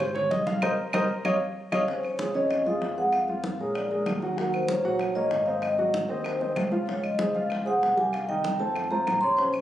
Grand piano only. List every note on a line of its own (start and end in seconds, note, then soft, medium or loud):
0.00 0.15 C5 medium
0.15 0.30 C#5 loud
0.31 0.46 D#5 medium
0.47 0.62 F5 medium
0.62 0.73 A#4 loud
0.62 0.72 C5 loud
0.62 0.73 D#5 medium
0.94 1.04 A#4 loud
0.94 1.04 C5 loud
0.94 1.04 D#5 loud
1.25 1.35 C#5 loud
1.25 1.35 D#5 loud
1.25 1.35 F5 medium
1.72 1.82 C#5 loud
1.72 1.82 D#5 loud
1.72 1.82 F5 loud
1.88 2.14 C#3 medium
1.88 2.14 C#4 medium
2.19 2.32 F3 medium
2.19 2.32 F4 medium
2.19 2.32 G#4 medium
2.35 2.60 C#3 medium
2.35 2.61 C#4 medium
2.35 2.61 C#5 medium
2.66 2.92 F3 medium
2.66 2.92 F4 medium
2.66 2.92 G#4 medium
2.98 3.23 G#3 medium
2.98 3.23 G#4 medium
2.98 3.23 B4 medium
3.29 3.54 F3 medium
3.29 3.55 F4 medium
3.29 3.55 F5 medium
3.60 3.86 G#3 medium
3.60 3.86 G#4 medium
3.60 3.86 A#4 medium
3.91 4.17 G#3 medium
3.91 4.17 G#4 medium
3.91 4.17 A#4 medium
4.22 4.35 F#3 medium
4.22 4.35 F#4 medium
4.22 4.36 F#5 medium
4.37 4.63 F#3 medium
4.37 4.63 F#4 medium
4.37 4.63 F#5 medium
4.69 4.82 A#3 medium
4.69 4.82 A#4 medium
4.69 4.82 C#5 medium
4.85 5.10 F#3 medium
4.85 5.10 F#4 medium
4.85 5.11 F#5 medium
5.16 5.41 A#3 medium
5.16 5.42 A#4 medium
5.16 5.42 C#5 medium
5.47 5.73 C4 medium
5.47 5.73 C5 medium
5.47 5.73 D#5 medium
5.79 6.04 F#3 medium
5.79 6.04 F#4 medium
5.79 6.05 F#5 medium
6.09 6.35 C4 medium
6.09 6.36 C5 medium
6.09 6.36 D#5 medium
6.41 6.67 C4 medium
6.41 6.67 C5 medium
6.41 6.67 D#5 medium
6.71 6.85 F3 medium
6.71 6.85 F4 medium
6.71 6.85 F5 medium
6.88 7.14 F3 medium
6.88 7.14 F4 medium
6.88 7.14 F5 medium
7.18 7.32 G#3 medium
7.18 7.32 G#4 medium
7.18 7.32 C5 medium
7.35 7.61 F3 medium
7.35 7.61 F4 medium
7.35 7.61 F5 medium
7.65 7.91 G#3 medium
7.65 7.92 G#4 medium
7.65 7.92 C5 medium
7.97 8.23 G3 medium
7.97 8.23 G4 medium
7.97 8.23 A#4 medium
8.29 8.55 D#3 medium
8.29 8.54 D#4 medium
8.29 8.55 D#5 medium
8.59 8.85 A3 medium
8.59 8.86 A4 medium
8.59 8.86 C5 medium
8.91 9.17 A3 medium
8.91 9.17 F4 medium
8.91 9.17 C5 medium
9.23 9.36 C#3 medium
9.23 9.36 C#4 medium
9.23 9.36 C#5 medium
9.39 9.61 C#3 medium
9.39 9.61 C#4 medium
9.39 9.61 C#5 medium